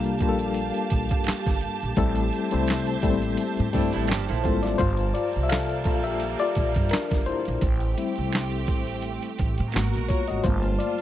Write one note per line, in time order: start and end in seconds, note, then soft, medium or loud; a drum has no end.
0.00 0.21 C2 medium
0.00 0.21 G3 loud
0.00 0.21 A#3 medium
0.00 1.95 A#3 medium
0.00 0.22 D4 medium
0.00 0.22 F4 loud
0.00 4.05 G4 medium
0.00 0.29 A4 loud
0.00 0.13 A#4 loud
0.00 1.95 F5 medium
0.00 4.76 A5 medium
0.04 closed hi-hat soft
0.04 shaker soft
0.19 0.69 A#1 medium
0.19 1.38 G3 medium
0.19 1.39 A#3 medium
0.19 1.39 D4 medium
0.19 1.39 F4 medium
0.19 0.29 G4 medium
0.19 kick loud
0.19 closed hi-hat medium
0.19 shaker soft
0.29 1.43 A4 medium
0.39 closed hi-hat soft
0.39 shaker soft
0.54 closed hi-hat medium
0.54 shaker medium
0.74 closed hi-hat soft
0.74 shaker soft
0.90 1.09 A#1 medium
0.90 kick medium
0.90 closed hi-hat medium
0.90 shaker soft
1.09 1.26 G2 loud
1.09 kick medium
1.09 closed hi-hat medium
1.09 shaker medium
1.24 finger snap medium
1.24 muted upright bass stroke soft
1.24 closed hi-hat medium
1.24 shaker medium
1.28 snare loud
1.28 clap loud
1.46 1.61 G1 medium
1.46 kick loud
1.46 snare soft
1.46 closed hi-hat medium
1.46 shaker soft
1.61 closed hi-hat medium
1.80 1.96 A#1 medium
1.80 closed hi-hat soft
1.80 shaker soft
1.97 2.29 A1 loud
1.97 2.42 G3 loud
1.97 2.42 A3 medium
1.97 2.42 C4 medium
1.97 2.42 E4 medium
1.97 2.42 A4 loud
1.97 4.07 C5 medium
1.97 4.07 E5 medium
1.97 kick loud
1.97 closed hi-hat medium
1.97 shaker medium
2.15 closed hi-hat soft
2.15 shaker soft
2.33 closed hi-hat medium
2.33 shaker medium
2.51 2.98 C2 medium
2.51 2.95 G3 medium
2.51 2.95 A3 medium
2.51 2.95 C4 medium
2.51 2.95 E4 medium
2.51 2.95 C5 medium
2.51 closed hi-hat soft
2.51 shaker soft
2.68 finger snap medium
2.68 snare loud
2.68 clap medium
2.68 closed hi-hat medium
2.68 shaker medium
2.87 closed hi-hat soft
2.87 shaker soft
3.02 3.35 A1 medium
3.02 3.63 G3 medium
3.02 3.63 A3 medium
3.02 3.11 A#3 medium
3.02 3.63 E4 medium
3.02 3.64 A4 medium
3.02 kick medium
3.02 closed hi-hat medium
3.02 shaker medium
3.10 3.66 C4 medium
3.22 closed hi-hat soft
3.22 shaker soft
3.37 closed hi-hat medium
3.37 shaker medium
3.57 3.73 A2 medium
3.57 closed hi-hat medium
3.57 shaker soft
3.73 3.92 G2 medium
3.73 4.09 G3 medium
3.73 4.09 A3 medium
3.73 3.93 A3 medium
3.73 4.09 C4 medium
3.73 3.93 D4 medium
3.73 4.09 E4 medium
3.73 4.10 A4 medium
3.73 kick medium
3.73 closed hi-hat medium
3.93 4.08 A1 medium
3.93 4.09 A3 medium
3.93 4.09 E4 medium
3.93 closed hi-hat medium
3.93 shaker medium
4.08 4.27 G1 medium
4.08 4.79 F3 medium
4.08 4.79 A#3 medium
4.08 4.28 D4 medium
4.08 4.28 G4 medium
4.08 4.79 C5 medium
4.08 finger snap medium
4.08 closed hi-hat medium
4.08 shaker medium
4.12 snare loud
4.12 clap medium
4.28 4.44 A#1 medium
4.28 4.77 E4 medium
4.28 4.77 A4 medium
4.28 closed hi-hat medium
4.28 shaker soft
4.43 4.76 G#1 medium
4.43 4.74 G3 medium
4.43 4.74 A#3 medium
4.43 4.75 C4 medium
4.43 4.54 E4 medium
4.43 4.64 F4 medium
4.43 4.75 A4 medium
4.43 4.52 C5 medium
4.43 kick medium
4.43 closed hi-hat medium
4.43 shaker soft
4.63 4.79 F4 medium
4.63 4.78 D5 medium
4.63 snare soft
4.63 closed hi-hat soft
4.63 shaker soft
4.78 5.11 G1 loud
4.78 7.59 F3 medium
4.78 7.59 G3 medium
4.78 7.59 A#3 medium
4.78 5.13 F4 medium
4.78 5.15 C5 medium
4.78 7.59 A5 medium
4.78 kick loud
4.78 closed hi-hat medium
4.78 shaker medium
4.97 closed hi-hat soft
4.97 shaker soft
5.14 5.43 F4 medium
5.14 5.42 D5 medium
5.14 closed hi-hat medium
5.33 5.86 C2 medium
5.33 closed hi-hat soft
5.33 shaker soft
5.43 5.50 E5 medium
5.49 5.84 A4 medium
5.49 6.06 F5 loud
5.49 finger snap medium
5.49 snare loud
5.49 clap medium
5.49 closed hi-hat medium
5.49 shaker medium
5.69 closed hi-hat soft
5.69 shaker soft
5.84 6.34 A#1 medium
5.84 7.58 A#3 medium
5.84 6.40 F4 medium
5.84 7.58 A4 medium
5.84 kick medium
5.84 closed hi-hat medium
5.84 shaker soft
6.04 6.39 G4 medium
6.04 6.37 E5 medium
6.04 closed hi-hat soft
6.04 shaker soft
6.20 closed hi-hat medium
6.20 shaker medium
6.39 6.89 F4 medium
6.39 6.93 D5 loud
6.39 closed hi-hat soft
6.39 shaker soft
6.55 6.74 A#1 medium
6.55 kick medium
6.55 closed hi-hat medium
6.55 shaker soft
6.74 6.90 G2 medium
6.74 kick medium
6.74 closed hi-hat medium
6.74 shaker medium
6.89 7.25 D4 medium
6.89 7.24 A#4 medium
6.89 finger snap medium
6.89 closed hi-hat medium
6.89 shaker medium
6.93 muted upright bass stroke soft
6.93 snare loud
6.93 clap loud
7.11 7.26 G1 medium
7.11 kick loud
7.11 snare soft
7.11 closed hi-hat medium
7.11 shaker soft
7.26 7.97 E4 medium
7.26 8.64 C5 medium
7.26 closed hi-hat medium
7.45 7.61 A#1 medium
7.45 closed hi-hat soft
7.45 shaker soft
7.61 7.94 A1 loud
7.61 9.71 A3 medium
7.61 9.72 C4 medium
7.61 9.72 G4 medium
7.61 kick loud
7.61 closed hi-hat medium
7.61 shaker medium
7.80 closed hi-hat medium
7.80 shaker soft
7.97 8.46 G3 medium
7.97 8.46 C4 medium
7.97 8.46 E4 medium
7.97 closed hi-hat medium
8.16 8.69 C2 medium
8.16 closed hi-hat soft
8.16 shaker soft
8.32 finger snap medium
8.32 snare loud
8.32 clap medium
8.32 closed hi-hat medium
8.32 shaker medium
8.51 closed hi-hat soft
8.51 shaker soft
8.67 9.17 A1 medium
8.67 kick medium
8.67 closed hi-hat medium
8.67 shaker soft
8.87 closed hi-hat soft
8.87 shaker soft
9.02 closed hi-hat medium
9.02 shaker medium
9.22 closed hi-hat medium
9.22 shaker soft
9.39 9.57 A1 medium
9.39 kick medium
9.39 closed hi-hat medium
9.39 shaker soft
9.58 9.73 A2 loud
9.58 closed hi-hat medium
9.58 shaker medium
9.72 9.92 G#1 loud
9.72 10.43 G#3 medium
9.72 10.22 A#3 medium
9.72 10.22 B3 soft
9.72 10.43 F#4 medium
9.72 10.23 F#4 medium
9.72 10.43 A#4 medium
9.72 finger snap medium
9.72 closed hi-hat medium
9.72 shaker medium
9.76 snare loud
9.76 clap loud
9.93 10.09 A#1 medium
9.93 snare soft
9.93 closed hi-hat medium
9.93 shaker soft
10.08 10.28 F4 medium
10.08 10.29 C#5 medium
10.08 kick medium
10.08 closed hi-hat medium
10.27 10.44 G#1 medium
10.27 10.44 F#4 medium
10.27 10.45 D#5 medium
10.27 closed hi-hat medium
10.27 shaker soft
10.44 10.76 G1 loud
10.44 11.02 G3 medium
10.44 11.02 A3 medium
10.44 11.02 A#3 soft
10.44 11.02 F4 medium
10.44 10.78 F4 medium
10.44 10.77 C5 medium
10.44 11.02 A5 medium
10.44 kick loud
10.44 closed hi-hat medium
10.44 shaker medium
10.63 closed hi-hat soft
10.63 shaker soft
10.79 11.02 F4 medium
10.79 11.02 D5 medium
10.79 closed hi-hat medium
10.98 closed hi-hat soft